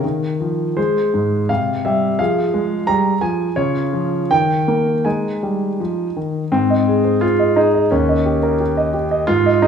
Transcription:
grand piano
0.04 D#3
0.41 F3
0.77 G#3 G#4 C5
1.14 G#2
1.49 C3 F5
1.85 G3 E5
2.19 F3 G#4 F5
2.54 G#3
2.87 G3 A#5
3.21 F3 G#5
3.56 C#3 F4 C#5
3.93 F3
4.31 D#3 G5
4.68 A#3
5.05 G#3 D#4 G#5
5.43 G3
5.80 F3
6.16 D#3
6.52 G#2 C4
6.70 D#5
6.88 G#4
7.05 C5
7.21 F4 G#4
7.39 D#5
7.56 D#4 G#4
7.75 D#5
7.91 D#2 C#4
8.09 D#5
8.26 G4
8.43 A#4
8.60 G4
8.77 D#5
8.94 G4
9.11 D#5
9.27 G#2 F4
9.46 D#5
9.62 D#4 G#4

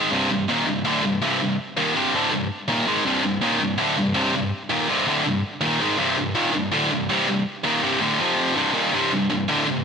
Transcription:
distorted electric guitar
Already playing: G#2 D#3 G#3
0.11 C2 G2 C3
0.30 C2 G2
0.49 D#2 A#2 D#3
0.67 C2 G2
0.85 D2 A2 D3
1.03 C2 G2
1.22 C2 G2 C3
1.41 C2 G2
1.77 D#2 A#2 D#3
1.95 C2 G2 C3
2.14 D2 A2 D3
2.32 C2 G2
2.68 D#2 A#2 D#3
2.87 G#2 D#3 G#3
3.05 C2 G2 C3
3.24 C2 G2
3.42 D#2 A#2 D#3
3.60 C2 G2
3.78 D2 A2 D3
3.98 C2 G2
4.14 C2 G2 C3
4.34 C2 G2
4.70 D#2 A#2 D#3
4.88 C2 G2 C3
5.07 D2 A2 D3
5.25 C2 G2
5.61 D#2 A#2 D#3
5.80 G#2 D#3 G#3
5.98 C2 G2 C3
6.18 C2 G2
6.35 D#2 A#2 D#3
6.53 C2 G2
6.72 D2 A2 D3
6.92 C2 G2
7.10 C2 G2 C3
7.29 C2 G2
7.64 D#2 A#2 D#3
7.83 C2 G2 C3
8.01 D2 A2 D3
8.20 F2 C3 F3
8.55 C2 G2 C3
8.74 D#2 A#2 D#3
8.93 C2 G2 C3
9.12 C2 G2
9.30 C2 G2
9.49 D2 A2 D3
9.67 C2 G2

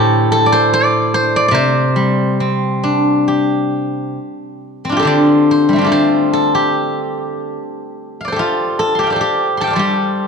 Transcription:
guzheng
Already playing: A2 D3 G4 A4 C5
0.32 A4
0.46 D5
0.52 C5
0.73 D5
1.14 C5
1.36 D5
1.48 C3 D5
1.54 C5
1.96 G3
2.40 C4
2.83 D4
3.28 G4
4.85 C4
4.89 D4 F4
4.97 G4 A4
5.03 D3 C5
5.07 D5
5.51 C5
5.69 G3
5.73 A3 C4
5.78 D4 F4
5.84 G4 A4
5.92 C5
6.33 A4
6.55 G4
8.21 D5 F5
8.28 C5
8.32 G4 A4
8.39 F4
8.79 A4
8.95 G4 C6
9.00 G5 A5
9.07 D5 F5
9.12 A4 C5
9.21 G4
9.57 A4 A5 C6
9.64 F5 G5
9.71 C5 D5
9.76 G3 G4 A4

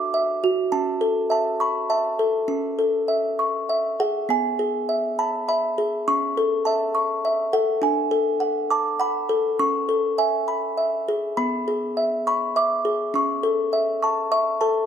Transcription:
music box
Already playing: D4 F#4 E5 A5 D6
0.14 E5
0.44 F#4
0.72 C#4 A5
1.01 A4
1.30 E5 A5
1.60 B5 C#6
1.90 E5 A5
2.19 A4
2.48 C#4
2.79 A4
3.08 E5
3.39 C#6
3.69 E5
4.00 G#4 F#5
4.29 B3 G#5
4.59 G#4
4.89 E5
5.19 A5 B5
5.49 E5 B5
5.78 G#4
6.08 C#4 C#6
6.37 A4
6.65 E5 A5
6.95 C#6
7.25 E5
7.53 A4 F#5
7.82 D4 G#5
8.11 A4
8.40 F#5
8.71 A5 D6
9.00 F#5 B5
9.29 A4
9.59 C#4 C#6
9.89 A4
10.18 E5 G#5
10.48 B5
10.78 E5
11.08 G#4
11.37 B3 B5
11.68 G#4
11.97 E5
12.27 B5 C#6
12.56 E5 D6
12.85 G#4
13.14 C#4 C#6
13.43 A4
13.73 E5
14.03 A5 C#6
14.32 E5 C#6
14.61 A4 A5

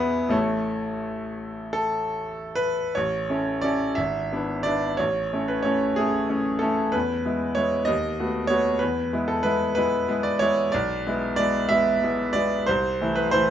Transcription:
grand piano
Already playing: E2 B3 E4 G#4 B4 D5
0.29 A1 A3 E4 A4 C#5
1.73 A4
2.56 B4
2.95 A1 C#5
3.30 C#4 E4 A4
3.62 C#4 E4 A4 D5
3.95 G#1 E5
4.33 B3 D4 E4
4.63 B3 D4 E4 D5
4.97 A1 C#5
5.33 A3 C#4 E4
5.48 B4
5.63 A3 C#4 E4 C#5
5.96 A3 C#4 E4 G#4
6.29 A3 C#4 E4
6.59 A3 C#4 E4 A4
6.92 E2 B4
7.25 G#3 B3 E4
7.55 G#3 B3 E4 C#5
7.85 D#2 D#5
8.20 A3 B3 F#4
8.47 A3 B3 F#4 C#5
8.79 E2 B4
9.13 G#3 B3 E4
9.28 A4
9.43 G#3 B3 E4 B4
9.75 G#3 B3 E4 B4
10.09 G#3 B3 E4
10.23 D5
10.39 G#3 B3 E4 C#5
10.72 B1 D5
11.06 G#3 B3 E4
11.36 G#3 B3 E4 D5
11.69 G#3 B3 E4 E5
12.02 G#3 B3 E4
12.33 G#3 B3 E4 D5
12.66 C2 C5
13.01 E3 A3 E4
13.15 B4
13.31 E3 A3 E4 C5

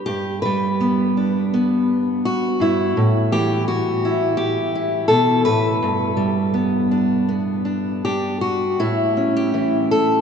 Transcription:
steel-string acoustic guitar
0.06 G2 G4
0.42 G3 B4
0.80 B3
1.17 D4
1.54 B3
2.25 F#4
2.60 G2 E4
2.97 A2
3.32 E3 G4
3.68 F#4
4.05 E4
4.37 G4
4.75 E4
5.08 B2 A4
5.45 A2 B4
5.83 G2
6.17 G3
6.54 B3
6.91 D4
7.29 B3
7.65 D4
8.05 D4 G4
8.41 F#4
8.80 A2 E4
9.17 C#4
9.37 G4
9.54 E3 E4
9.91 A4

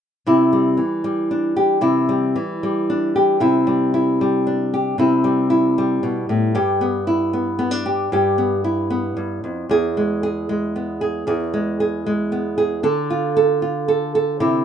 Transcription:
nylon-string guitar
0.27 C3 E4
0.53 G3
0.77 E3
1.04 G3
1.31 D4
1.57 G4
1.81 C3 E4
2.09 G3
2.36 E3
2.63 G3
2.90 D4
3.16 G4
3.40 C3 E4
3.67 G3
3.94 E4
4.21 G3
4.47 D4
4.74 G4
4.98 C3 E4
5.24 G3
5.50 E4
5.78 G3
6.03 B2
6.29 A2
6.55 G2 G4
6.81 B3
7.07 E4
7.33 B3
7.59 B3
7.71 D4
7.86 G4
8.12 G2 G4
8.38 B3
8.64 E4
8.90 B3
9.17 G2
9.44 F2
9.69 E2 G#4
9.97 G#3
10.23 G#4
10.49 G#3
10.76 B3
11.01 G#4
11.27 E2 G#4
11.54 G#3
11.80 G#4
12.06 G#3
12.32 B3
12.58 G#4
12.83 D3 A4
13.10 F4
13.37 A4
13.62 F4
13.88 A4
14.15 A4
14.40 C3 E4

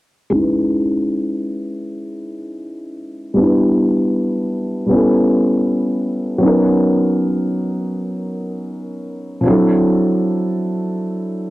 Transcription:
felt piano
0.30 G#3 C#4
0.35 D#4 E4
0.39 B4
3.34 G3 B3
3.38 D4 E4
3.43 B4
4.86 G3 B3
4.91 C#4 E4
4.96 A4
6.38 F#3 B3
6.43 C#4 D#4
6.47 A#4
9.41 F3 C4
9.46 F#3 D4 E4
9.50 A4

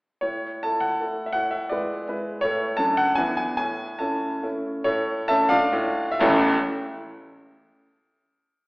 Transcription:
grand piano
0.21 A2 C#5
0.63 A3 E4 A4 A5
0.80 F#5
1.01 A3 E4 A4
1.26 E5
1.33 A2 F#5
1.51 E5
1.69 G#3 E4 B4 D5
2.08 G#3 E4 B4
2.41 A2 A3 E4 A4 C#5
2.77 F#2 A3 D4 A4 A5
2.97 F#5
3.15 E2 B3 D4 E4 G#5
3.37 G#5
3.57 A2 G#5
3.99 A3 C#4 E4 A5
4.43 A3 C#4 E4
4.84 A2 A4 C#5
5.28 A3 C#4 E4 E5 A5
5.49 A3 D4 F4 D5 F5
5.72 A2
6.12 E5
6.20 A1 E2 E3 A3 C#4 E4 A5

